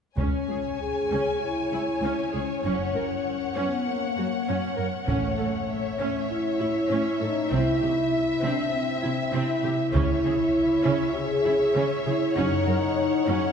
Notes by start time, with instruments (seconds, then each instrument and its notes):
0.18 cello section C#2, double bass section C#2, viola section C#4, french horn section C#4, violin section C#5 G#5, taiko
0.49 cello section C#2, viola section G#4
0.80 french horn section G#4
1.11 cello section C#2, viola section C#4
1.40 french horn section E4
1.72 cello section C#2, viola section E4
2.02 cello section C#2, viola section C#4
2.33 cello section C#2, french horn section C#4, viola section G#4
2.64 double bass section F#1, cello section F#2, french horn section C#4, viola section C#4, violin section F#5
2.94 cello section F#2, viola section A#4
3.56 cello section F#2, french horn section B3, viola section C#4
3.86 french horn section A#3
4.17 cello section F#2, viola section F#4
4.48 cello section F#2, viola section C#4
4.77 cello section F#2, viola section A#4
5.07 double bass section A1, cello section A2, french horn section A3, viola section C#4, violin section C#5, taiko
5.37 cello section A2, viola section A4
5.70 violin section E5
5.99 cello section A2, viola section C#4, french horn section C#4
6.30 french horn section E4
6.59 cello section A2, viola section E4
6.90 cello section A2, viola section C#4
7.21 cello section A2, french horn section D#4, viola section A4
7.50 double bass section C2, cello section C3, viola section C4, french horn section E4, violin section E5
7.81 cello section C3, viola section G4
8.42 cello section C3, viola section C4, french horn section D4
8.73 french horn section C4
9.02 cello section C3, viola section E4
9.33 cello section C3, viola section C4, french horn section E4
9.64 cello section C3, viola section G4
9.93 double bass section C#2, cello section C#3, viola section C#4, french horn section E4, violin section C#5 E5, taiko
10.25 cello section C#3, viola section G#4
10.84 cello section C#3, viola section C#4
11.16 french horn section G#4
11.44 cello section C#3, viola section E4
11.75 cello section C#3, viola section C#4
12.05 cello section C#3, french horn section E4, viola section G#4
12.36 double bass section F#1, cello section F#2, viola section C#4, french horn section D#4, violin section F#5
12.67 cello section F#2, viola section A#4
13.27 cello section F#2, viola section C#4